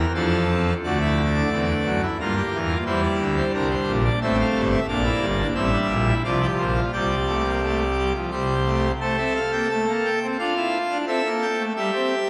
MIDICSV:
0, 0, Header, 1, 2, 480
1, 0, Start_track
1, 0, Tempo, 677966
1, 588, Time_signature, 3, 2, 24, 8
1, 4423, Tempo, 692841
1, 6823, Tempo, 676437
1, 8658, End_track
2, 0, Start_track
2, 0, Title_t, "Pipe organ"
2, 0, Program_c, 0, 19
2, 0, Note_on_c, 0, 70, 80
2, 88, Note_off_c, 0, 70, 0
2, 100, Note_on_c, 0, 41, 72
2, 103, Note_on_c, 0, 65, 69
2, 104, Note_on_c, 0, 62, 66
2, 104, Note_on_c, 0, 69, 77
2, 105, Note_on_c, 0, 53, 73
2, 253, Note_off_c, 0, 62, 0
2, 347, Note_on_c, 0, 60, 63
2, 497, Note_off_c, 0, 60, 0
2, 518, Note_off_c, 0, 41, 0
2, 519, Note_off_c, 0, 65, 0
2, 520, Note_off_c, 0, 53, 0
2, 520, Note_off_c, 0, 69, 0
2, 592, Note_on_c, 0, 38, 60
2, 594, Note_on_c, 0, 66, 67
2, 595, Note_on_c, 0, 50, 65
2, 595, Note_on_c, 0, 57, 63
2, 596, Note_on_c, 0, 74, 60
2, 696, Note_off_c, 0, 66, 0
2, 711, Note_on_c, 0, 64, 62
2, 861, Note_off_c, 0, 64, 0
2, 954, Note_on_c, 0, 62, 63
2, 1007, Note_off_c, 0, 38, 0
2, 1009, Note_off_c, 0, 50, 0
2, 1057, Note_off_c, 0, 62, 0
2, 1077, Note_on_c, 0, 52, 58
2, 1077, Note_on_c, 0, 60, 62
2, 1080, Note_on_c, 0, 40, 65
2, 1179, Note_off_c, 0, 60, 0
2, 1189, Note_on_c, 0, 62, 63
2, 1225, Note_off_c, 0, 52, 0
2, 1227, Note_off_c, 0, 40, 0
2, 1312, Note_on_c, 0, 42, 62
2, 1313, Note_on_c, 0, 54, 62
2, 1339, Note_off_c, 0, 62, 0
2, 1423, Note_off_c, 0, 57, 0
2, 1424, Note_off_c, 0, 74, 0
2, 1435, Note_on_c, 0, 64, 62
2, 1461, Note_off_c, 0, 42, 0
2, 1462, Note_off_c, 0, 54, 0
2, 1538, Note_off_c, 0, 64, 0
2, 1557, Note_on_c, 0, 70, 56
2, 1558, Note_on_c, 0, 43, 56
2, 1558, Note_on_c, 0, 58, 61
2, 1558, Note_on_c, 0, 65, 67
2, 1560, Note_on_c, 0, 55, 59
2, 1660, Note_off_c, 0, 65, 0
2, 1678, Note_on_c, 0, 67, 67
2, 1706, Note_off_c, 0, 43, 0
2, 1707, Note_off_c, 0, 55, 0
2, 1795, Note_on_c, 0, 40, 59
2, 1797, Note_on_c, 0, 52, 57
2, 1825, Note_off_c, 0, 67, 0
2, 1900, Note_on_c, 0, 65, 62
2, 1943, Note_off_c, 0, 40, 0
2, 1944, Note_off_c, 0, 52, 0
2, 1967, Note_off_c, 0, 70, 0
2, 1968, Note_off_c, 0, 58, 0
2, 2008, Note_off_c, 0, 65, 0
2, 2021, Note_on_c, 0, 52, 67
2, 2021, Note_on_c, 0, 55, 65
2, 2023, Note_on_c, 0, 64, 61
2, 2023, Note_on_c, 0, 72, 77
2, 2027, Note_on_c, 0, 40, 63
2, 2130, Note_off_c, 0, 72, 0
2, 2144, Note_on_c, 0, 74, 73
2, 2172, Note_off_c, 0, 52, 0
2, 2177, Note_off_c, 0, 40, 0
2, 2265, Note_on_c, 0, 38, 61
2, 2265, Note_on_c, 0, 50, 61
2, 2294, Note_off_c, 0, 74, 0
2, 2384, Note_on_c, 0, 72, 63
2, 2415, Note_off_c, 0, 38, 0
2, 2415, Note_off_c, 0, 50, 0
2, 2438, Note_off_c, 0, 64, 0
2, 2490, Note_off_c, 0, 72, 0
2, 2503, Note_on_c, 0, 48, 70
2, 2504, Note_on_c, 0, 62, 68
2, 2505, Note_on_c, 0, 70, 77
2, 2506, Note_on_c, 0, 36, 68
2, 2610, Note_off_c, 0, 70, 0
2, 2622, Note_on_c, 0, 72, 73
2, 2653, Note_off_c, 0, 48, 0
2, 2655, Note_off_c, 0, 36, 0
2, 2741, Note_on_c, 0, 34, 71
2, 2742, Note_on_c, 0, 46, 64
2, 2773, Note_off_c, 0, 72, 0
2, 2847, Note_off_c, 0, 55, 0
2, 2864, Note_on_c, 0, 74, 81
2, 2892, Note_off_c, 0, 34, 0
2, 2892, Note_off_c, 0, 46, 0
2, 2917, Note_off_c, 0, 62, 0
2, 2969, Note_off_c, 0, 74, 0
2, 2983, Note_on_c, 0, 33, 64
2, 2983, Note_on_c, 0, 45, 71
2, 2985, Note_on_c, 0, 76, 82
2, 2986, Note_on_c, 0, 57, 70
2, 2986, Note_on_c, 0, 60, 70
2, 3088, Note_off_c, 0, 76, 0
2, 3114, Note_on_c, 0, 77, 76
2, 3132, Note_off_c, 0, 33, 0
2, 3132, Note_off_c, 0, 45, 0
2, 3224, Note_on_c, 0, 31, 68
2, 3225, Note_on_c, 0, 43, 73
2, 3259, Note_off_c, 0, 77, 0
2, 3335, Note_on_c, 0, 76, 71
2, 3372, Note_off_c, 0, 31, 0
2, 3373, Note_off_c, 0, 43, 0
2, 3396, Note_off_c, 0, 57, 0
2, 3396, Note_off_c, 0, 60, 0
2, 3442, Note_off_c, 0, 76, 0
2, 3456, Note_on_c, 0, 62, 78
2, 3457, Note_on_c, 0, 58, 76
2, 3457, Note_on_c, 0, 74, 78
2, 3458, Note_on_c, 0, 46, 70
2, 3459, Note_on_c, 0, 34, 77
2, 3562, Note_off_c, 0, 62, 0
2, 3566, Note_on_c, 0, 64, 85
2, 3608, Note_off_c, 0, 46, 0
2, 3609, Note_off_c, 0, 34, 0
2, 3686, Note_on_c, 0, 31, 73
2, 3686, Note_on_c, 0, 43, 72
2, 3721, Note_off_c, 0, 64, 0
2, 3809, Note_on_c, 0, 62, 76
2, 3840, Note_off_c, 0, 31, 0
2, 3840, Note_off_c, 0, 43, 0
2, 3872, Note_off_c, 0, 74, 0
2, 3873, Note_off_c, 0, 58, 0
2, 3919, Note_off_c, 0, 62, 0
2, 3927, Note_on_c, 0, 33, 77
2, 3928, Note_on_c, 0, 55, 74
2, 3929, Note_on_c, 0, 76, 78
2, 3930, Note_on_c, 0, 60, 81
2, 3931, Note_on_c, 0, 45, 76
2, 4039, Note_off_c, 0, 60, 0
2, 4053, Note_on_c, 0, 62, 76
2, 4081, Note_off_c, 0, 33, 0
2, 4084, Note_off_c, 0, 45, 0
2, 4170, Note_on_c, 0, 34, 76
2, 4172, Note_on_c, 0, 46, 74
2, 4205, Note_off_c, 0, 62, 0
2, 4300, Note_on_c, 0, 64, 83
2, 4323, Note_off_c, 0, 34, 0
2, 4325, Note_off_c, 0, 46, 0
2, 4348, Note_off_c, 0, 55, 0
2, 4348, Note_off_c, 0, 76, 0
2, 4405, Note_off_c, 0, 64, 0
2, 4418, Note_on_c, 0, 65, 78
2, 4420, Note_on_c, 0, 48, 74
2, 4421, Note_on_c, 0, 36, 63
2, 4422, Note_on_c, 0, 53, 67
2, 4423, Note_on_c, 0, 74, 63
2, 4523, Note_off_c, 0, 65, 0
2, 4543, Note_on_c, 0, 67, 74
2, 4569, Note_off_c, 0, 48, 0
2, 4570, Note_off_c, 0, 36, 0
2, 4571, Note_off_c, 0, 74, 0
2, 4652, Note_on_c, 0, 46, 64
2, 4652, Note_on_c, 0, 72, 67
2, 4655, Note_on_c, 0, 34, 65
2, 4691, Note_off_c, 0, 67, 0
2, 4772, Note_on_c, 0, 65, 67
2, 4804, Note_off_c, 0, 46, 0
2, 4805, Note_off_c, 0, 72, 0
2, 4807, Note_off_c, 0, 34, 0
2, 4835, Note_off_c, 0, 53, 0
2, 4880, Note_off_c, 0, 65, 0
2, 4894, Note_on_c, 0, 55, 65
2, 4894, Note_on_c, 0, 74, 64
2, 4895, Note_on_c, 0, 36, 65
2, 4896, Note_on_c, 0, 67, 70
2, 4898, Note_on_c, 0, 48, 69
2, 5046, Note_off_c, 0, 55, 0
2, 5136, Note_on_c, 0, 57, 57
2, 5242, Note_off_c, 0, 57, 0
2, 5247, Note_on_c, 0, 58, 54
2, 5357, Note_off_c, 0, 58, 0
2, 5375, Note_on_c, 0, 57, 58
2, 5527, Note_off_c, 0, 57, 0
2, 5612, Note_on_c, 0, 55, 61
2, 5721, Note_off_c, 0, 55, 0
2, 5726, Note_off_c, 0, 36, 0
2, 5726, Note_off_c, 0, 74, 0
2, 5727, Note_off_c, 0, 67, 0
2, 5728, Note_off_c, 0, 48, 0
2, 5739, Note_on_c, 0, 53, 56
2, 5846, Note_off_c, 0, 53, 0
2, 5852, Note_on_c, 0, 67, 59
2, 5853, Note_on_c, 0, 36, 58
2, 5853, Note_on_c, 0, 48, 57
2, 5855, Note_on_c, 0, 55, 61
2, 5855, Note_on_c, 0, 72, 58
2, 6008, Note_off_c, 0, 55, 0
2, 6094, Note_on_c, 0, 57, 64
2, 6247, Note_off_c, 0, 57, 0
2, 6271, Note_off_c, 0, 36, 0
2, 6271, Note_off_c, 0, 67, 0
2, 6272, Note_off_c, 0, 48, 0
2, 6273, Note_off_c, 0, 72, 0
2, 6335, Note_on_c, 0, 57, 63
2, 6335, Note_on_c, 0, 69, 68
2, 6337, Note_on_c, 0, 72, 70
2, 6442, Note_off_c, 0, 57, 0
2, 6443, Note_off_c, 0, 72, 0
2, 6448, Note_on_c, 0, 60, 85
2, 6450, Note_on_c, 0, 76, 65
2, 6559, Note_off_c, 0, 76, 0
2, 6579, Note_on_c, 0, 77, 67
2, 6601, Note_off_c, 0, 60, 0
2, 6684, Note_off_c, 0, 77, 0
2, 6694, Note_on_c, 0, 79, 67
2, 6695, Note_on_c, 0, 58, 79
2, 6800, Note_off_c, 0, 79, 0
2, 6801, Note_off_c, 0, 58, 0
2, 6818, Note_on_c, 0, 81, 64
2, 6820, Note_on_c, 0, 57, 82
2, 6925, Note_off_c, 0, 57, 0
2, 6941, Note_on_c, 0, 58, 74
2, 6969, Note_off_c, 0, 81, 0
2, 7068, Note_on_c, 0, 79, 68
2, 7091, Note_off_c, 0, 58, 0
2, 7162, Note_off_c, 0, 69, 0
2, 7191, Note_on_c, 0, 60, 85
2, 7216, Note_off_c, 0, 79, 0
2, 7291, Note_off_c, 0, 60, 0
2, 7304, Note_on_c, 0, 77, 69
2, 7305, Note_on_c, 0, 65, 68
2, 7308, Note_on_c, 0, 62, 82
2, 7410, Note_off_c, 0, 62, 0
2, 7429, Note_on_c, 0, 64, 78
2, 7577, Note_off_c, 0, 64, 0
2, 7674, Note_on_c, 0, 62, 76
2, 7718, Note_off_c, 0, 77, 0
2, 7719, Note_off_c, 0, 65, 0
2, 7774, Note_off_c, 0, 62, 0
2, 7785, Note_on_c, 0, 60, 93
2, 7788, Note_on_c, 0, 69, 75
2, 7791, Note_on_c, 0, 76, 77
2, 7888, Note_off_c, 0, 60, 0
2, 7918, Note_on_c, 0, 58, 86
2, 7938, Note_off_c, 0, 76, 0
2, 8036, Note_on_c, 0, 79, 70
2, 8063, Note_off_c, 0, 58, 0
2, 8153, Note_on_c, 0, 57, 78
2, 8181, Note_off_c, 0, 79, 0
2, 8199, Note_off_c, 0, 69, 0
2, 8252, Note_off_c, 0, 57, 0
2, 8281, Note_on_c, 0, 67, 78
2, 8281, Note_on_c, 0, 76, 78
2, 8283, Note_on_c, 0, 55, 90
2, 8378, Note_off_c, 0, 55, 0
2, 8406, Note_on_c, 0, 60, 82
2, 8548, Note_off_c, 0, 60, 0
2, 8634, Note_on_c, 0, 58, 92
2, 8658, Note_off_c, 0, 58, 0
2, 8658, Note_off_c, 0, 67, 0
2, 8658, Note_off_c, 0, 76, 0
2, 8658, End_track
0, 0, End_of_file